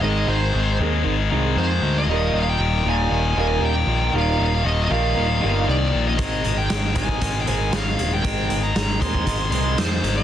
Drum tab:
HH |----------------|----------------|----------------|x-x-x-x-x-x-x-x-|
SD |----------------|----------------|----------------|----o-o-----o---|
BD |----------------|----------------|----------------|o-----ooo-------|

HH |x-x-x-x-x-x-x-x-|
SD |----o-------o---|
BD |o-----ooo-------|